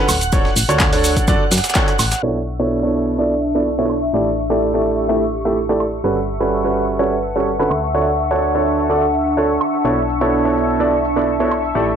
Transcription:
Already playing: F#5 F#6
0.09 D1, open hi-hat, high woodblock, shaker
0.21 closed hi-hat, shaker
0.32 D3 D4 F#4 A4 C#5, kick, closed hi-hat, shaker
0.45 snare
0.56 A1, open hi-hat, shaker
0.69 D2 D3 D4 F#4 A4 C#5, closed hi-hat, high woodblock, shaker
0.80 kick, snare, clap, closed hi-hat, shaker
0.93 D3 D4 F#4 A4 C#5, closed hi-hat, open hi-hat
1.04 open hi-hat, shaker
1.17 kick, closed hi-hat, shaker
1.28 F#2 D3 D4 F#4 A4 D5, kick, closed hi-hat, shaker
1.51 F#2, snare, open hi-hat, shaker
1.58 snare, shaker
1.64 snare, closed hi-hat, shaker
1.70 snare, shaker
1.75 D3 D4 F#4 A4 C#5, kick, snare, clap, closed hi-hat, shaker
1.88 clap, closed hi-hat
1.99 A1, open hi-hat, high woodblock, shaker
2.12 snare, closed hi-hat, shaker
2.23 B1 B2 D4 E4 A4 C#5 E5 C#6
2.59 B2 D4 E4 A4 C#5
2.81 B2 D4 E4 A4 C#5 E5
3.09 A5
3.18 B2 D4 E4 A4 D5
3.55 B2 D4 E4 A4 D5
3.79 B2 D4 E4 A4 C#5
3.90 high woodblock, shaker
4.03 shaker
4.13 A1 A3 E4 G4 A4 D5
4.38 G4, shaker
4.50 A3 E4 G4 A4 D5
4.74 A3 E4 G4 A4 D5
4.86 shaker
5.09 A3 E4 G4 A4 E5
5.33 shaker
5.45 A3 E4 G4 A4 E5
5.69 A3 E4 G4 A4 D5
5.80 high woodblock, shaker
5.93 shaker
6.04 G1 G3 C#4 F#4 A4 B4
6.27 B4, shaker
6.35 F#5
6.40 G3 C#4 F#4 A4 B4
6.52 shaker
6.64 G3 C#4 F#4 A4 B4
6.76 shaker
6.89 shaker
6.99 G3 C#4 F#4 A4 C#5, shaker
7.24 shaker
7.36 G3 C#4 F#4 A4 C#5, shaker
7.48 shaker
7.59 D3 C#4 F#4 A4 B4
7.70 D2 D4, high woodblock, shaker
7.84 shaker
7.94 D3 D4 F#4 A4 C#5, shaker
8.19 shaker
8.31 D3 D4 F#4 A4 C#5, shaker
8.43 shaker
8.55 D3 D4 F#4 A4 C#5
8.66 shaker
8.79 shaker
8.90 D3 D4 F#4 A4 D5, shaker
9.14 shaker
9.27 shaker
9.37 D3 D4 F#4 A4 C#5, shaker
9.61 high woodblock, shaker
9.74 shaker
9.85 B1 B2 D4 E4 A4 C#5, shaker
10.09 shaker
10.21 B2 D4 E4 A4 C#5, shaker
10.33 shaker
10.45 B2 D4 E4 A4 C#5
10.57 shaker
10.69 E5, shaker
10.80 B2 D4 E4 A4 D5, shaker
11.04 shaker
11.16 B2 D4 E4 A4 D5, shaker
11.28 shaker
11.40 B2 D4 E4 A4 C#5
11.51 high woodblock, shaker
11.65 shaker
11.75 A1 A3 E4 G4 A4 D5, shaker

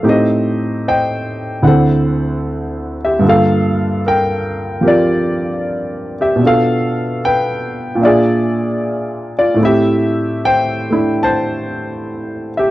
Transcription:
0.03 A2 A3 C4 D#4 G4
0.09 G4 C5 D#5
0.88 C5 D#5 G5
1.62 D2 D3 C4 E4 F#5
1.67 A4 C5 F#5
3.05 G4 E5
3.19 G2 D3
3.24 A#3 F4
3.29 A4 F5
4.06 A#4 G5
4.81 F3 C4 G4 A#4
4.87 F4 D5
6.21 G4 E5
6.36 B2 B3
6.42 D4 F4
6.46 A4 F5
7.25 B4 G5
7.95 A#2 A#3
8.01 D4 F4 D5 E5
8.06 G#4
9.39 F4 D5
9.54 A2 A3
9.60 C4 E4
9.65 G4 E5
10.45 C5 G5
10.90 A3 D4 E4
11.23 C5 A5
12.57 G4 E5

